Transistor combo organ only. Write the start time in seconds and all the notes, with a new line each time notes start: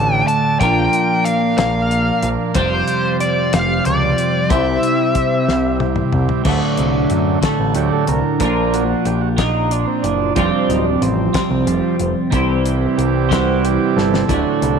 Already playing: A3 D4 F#4 A4
0.63 A#3 F4 A#4
2.56 G3 C4 G4
4.49 C4 E4
6.45 F#3 A3 D4
7.44 A4
7.75 F#3 A3 D4 G4
7.93 A4
8.08 A#4
8.40 F3 A#3 D4
8.73 F#4
9.06 G4
9.21 F#4
9.38 D#4
9.71 D4
9.87 C4
10.02 D4
10.35 F3 G3 C4 D4
10.69 D#4
10.84 D4
11.03 C4
11.66 F3 G3 C4
12.32 E3 G3 C4
12.97 G4
13.32 F#4
13.65 G4
13.97 A4
14.28 F#3 A3 D4